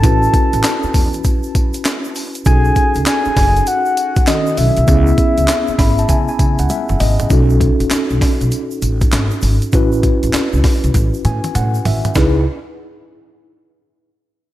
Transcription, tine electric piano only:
0.02 C#4 E4 F#4 B4
2.46 C#4 D#4 F#4 A4
4.27 D#3 C#4 F#4 A4
4.87 B3 C#4 E4 G#4
5.79 B5
5.99 A5
6.09 G#5
6.29 G#5
6.59 F#5
6.70 E5
7.00 D#5
7.30 C#4 D#4 F#4 A4
9.72 C#4 E4 F#4 B4
11.25 G#5
11.55 F#5
11.86 E5
12.16 D#4 E4 G#4 B4

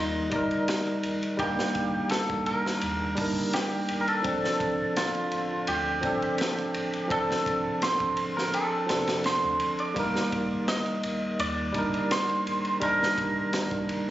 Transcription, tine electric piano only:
Already playing: G3 D#4 A#4 D5
0.30 G3 D#4 D5
0.36 A#4
1.37 G3 D4 D#4
1.43 A#3
3.15 G3 D4
3.19 D#4 A#4
4.22 F3 C4 D4
4.28 A4
6.01 F3 C4
6.05 D4 A4
7.08 F3 C4 D4
7.14 A4
8.86 F3 C4 D4
8.92 A4
9.94 G3 A#3
9.98 D#4 A#4
11.72 G3 D4 D#4
11.78 A#4
12.80 G3 D4 D#4
12.86 A#4

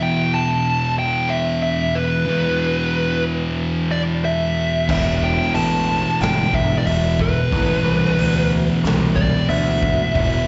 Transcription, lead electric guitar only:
0.03 G5
0.34 A5
0.99 G5
1.30 E5
1.63 E5
1.95 B4
3.91 D5
4.25 E5
4.91 E5
5.24 G5
5.55 A5
6.22 G5
6.54 E5
6.78 D5
6.87 E5
7.21 B4
9.16 D5
9.49 E5
10.16 E5

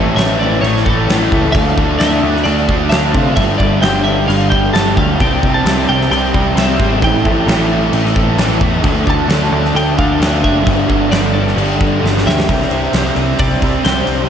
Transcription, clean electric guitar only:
Already playing: C#5
0.16 E5
0.40 D5
0.61 C#5
0.85 A4
1.52 F5
1.99 E5
2.44 D5
2.89 F5
3.36 E5
3.58 D5
3.82 G5
4.04 E5
4.28 F5
4.50 G5
4.73 A5
4.97 F5
5.21 G5
5.54 A5
5.89 G5
6.11 G5
6.59 E5
7.04 G5
9.10 A5
9.76 G5
9.98 F5
10.44 E5
11.12 D5
11.33 A4
12.27 E5
13.39 D5
13.84 C5

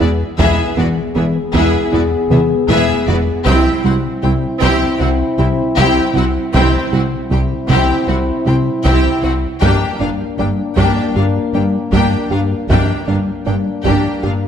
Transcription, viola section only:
0.00 B3 E4
0.39 B3 E4
0.78 B3 E4
1.16 B3 E4
1.55 B3 E4
1.92 B3 E4
2.31 B3 E4
2.69 B3 E4
3.08 B3 E4
3.46 C4 E4
3.85 C4 E4
4.23 C4 E4
4.62 C4 E4
5.01 C4 E4
5.39 C4 E4
5.78 C4 E4
6.16 C4 E4
6.55 C4 E4
6.93 C4 E4
7.32 C4 E4
7.70 C4 E4
8.09 C4 E4
8.47 C4 E4
8.86 C4 E4
9.24 C4 E4
9.62 A#3 D4
10.01 A#3 D4
10.40 A#3 D4
10.78 A#3 D4
11.17 A#3 D4
11.55 A#3 D4
11.93 A#3 D4
12.31 A#3 D4
12.70 A#3 D4
13.08 A#3 D4
13.46 A#3 D4
13.85 A#3 D4
14.24 A#3 D4

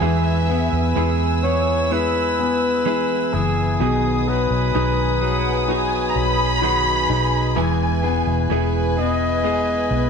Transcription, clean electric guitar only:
0.00 E3 G#3 B3 E4 G#4
0.48 B3 E4 G#4
0.96 E3 G#3 B3 E4 G#4
1.43 B3 E4 G#4
1.90 G#3 B3 E4 G#4
2.85 E3 G#3 B3 E4 G#4
3.33 B3 E4 G#4
3.80 B2 D#3 F#3 B3 D#4 G#4
4.27 F#3 B3 D#4 G#4
4.74 B2 D#3 F#3 B3 D#4 G#4
5.21 F#3 B3 D#4 G#4
5.68 F#3 B3 D#4 G#4
6.62 B2 D#3 F#3 B3 D#4 G#4
7.09 F#3 B3 D#4 G#4
7.56 E3 G#3 B3 E4 G#4
8.03 B3 E4 G#4
8.50 E3 G#3 B3 E4 G#4
8.97 B3 E4 G#4
9.43 G#3 B3 E4 G#4

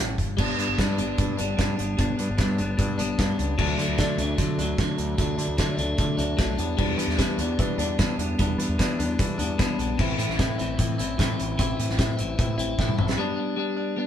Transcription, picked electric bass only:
Already playing: A1
0.18 G1
0.38 G1
0.58 G2
0.68 G1
0.79 G2
0.98 G1
1.18 G2
1.38 G1
1.59 G2
1.79 G1
1.99 G1
2.20 G2
2.29 G1
2.39 G2
2.59 G1
2.79 G2
2.98 G1
3.19 G2
3.39 C#2
3.58 D2
3.78 D3
3.88 D2
3.99 D3
4.18 D2
4.38 D3
4.58 D2
4.79 D3
4.98 D2
5.18 D2
5.38 D3
5.47 D2
5.58 D3
5.78 D2
5.98 D3
6.18 D2
6.38 B1
6.58 E2
6.79 E2
6.98 E3
7.07 E2
7.18 E3
7.38 E2
7.59 E3
7.78 E2
7.99 E3
8.18 E2
8.40 E2
8.59 E3
8.69 E2
8.79 E3
8.99 E2
9.19 E3
9.39 E2
9.59 E3
9.78 A#1
9.99 A1
10.18 A2
10.28 A1
10.39 A2
10.59 A1
10.79 A2
10.99 A1
11.19 A2
11.40 A1
11.59 A1
11.79 A2
11.89 A1
11.99 A2
12.19 A1
12.39 A2
12.58 A1
12.78 A2
12.98 A1

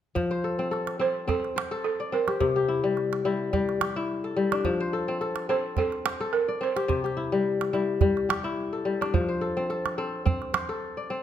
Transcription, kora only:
0.15 F3
0.31 C5
0.44 A4
0.59 C4
0.71 A4
0.99 C4 A4
1.28 C4
1.56 C5
1.71 A4
2.00 D5
2.12 C4
2.28 G4
2.40 C3
2.56 G4
2.68 E4
2.84 G3
3.25 G3 E4
3.53 G3
3.81 G4
3.96 E4
4.24 A4
4.36 G3
4.52 D4
4.65 F3
4.80 C5
4.93 A4
5.08 C4
5.21 A4
5.49 C4 A4
5.78 C4
6.05 C5
6.21 A4
6.48 D5
6.61 C4
6.76 G4
6.88 C3
7.04 G4
7.17 E4
7.32 G3
7.73 G3 E4
8.01 G3
8.29 G4
8.44 E4
8.73 A4
8.85 G3
9.01 D4
9.14 F3
9.29 C5
9.41 A4
9.57 C4
9.70 A4
9.98 C4 A4
10.26 C4
10.54 C5
10.69 A4
10.97 D5
11.10 C4

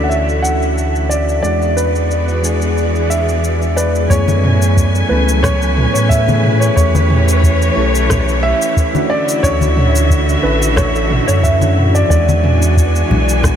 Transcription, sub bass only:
Already playing: D2
1.44 E2
4.10 F#2
5.10 C#2
5.95 A2
6.77 E2
7.77 B1
9.44 D2
10.44 A1
11.28 F#2
12.10 E2
13.10 B1

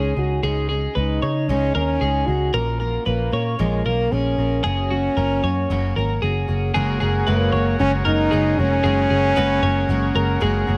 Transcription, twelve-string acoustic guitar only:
Already playing: G#3 C#4 D#4 G#4
0.16 C#4 D#4 G#4
0.43 C#3 G#3 C#4 D#4 G#4
0.69 C#4 D#4 G#4
0.95 G#3 C#4 D#4 G#4
1.22 C#4 D#4 G#4
1.49 C#3 G#3 C#4 D#4 G#4
1.75 C#4 D#4 G#4
2.01 G#3 C#4 D#4 G#4
2.28 C#4 D#4 G#4
2.53 A#2 F3 A#3 C#4 F4 A#4
2.79 A#3 C#4 F4 A#4
3.05 A#3 C#4 F4 A#4
3.32 A#3 C#4 F4 A#4
3.59 A#2 F3 A#3 C#4 F4 A#4
3.85 A#3 C#4 F4 A#4
4.12 A#3 C#4 F4 A#4
4.38 A#3 C#4 F4 A#4
4.64 F#2 C#3 F#3 A#3 C#4 F#4
4.90 F#3 A#3 C#4 F#4
5.17 F#3 A#3 C#4 F#4
5.44 F#3 A#3 C#4 F#4
5.70 F#2 C#3 F#3 A#3 C#4 F#4
5.97 F#3 A#3 C#4 F#4
6.22 F#3 A#3 C#4 F#4
6.48 F#3 A#3 C#4 F#4
6.75 F#2 C#3 G#3 A#3 C#4 F#4
7.00 G#3 A#3 C#4 F#4
7.27 F#2 C#3 G#3 A#3 C#4 F#4
7.52 G#3 A#3 C#4 F#4
7.79 G#3 A#3 C#4 F#4
8.05 G#3 A#3 C#4 F#4
8.32 F#2 C#3 G#3 A#3 C#4 F#4
8.59 G#3 A#3 C#4 F#4
8.84 F#2 C#3 G#3 A#3 C#4 F#4
9.10 G#3 A#3 C#4 F#4
9.36 F#2 C#3 G#3 A#3 C#4 F#4
9.62 G#3 A#3 C#4 F#4
9.89 G#3 A#3 C#4 F#4
10.15 G#3 A#3 C#4 F#4
10.40 F#2 C#3 G#3 A#3 C#4 F#4
10.67 G#3 A#3 C#4 F#4

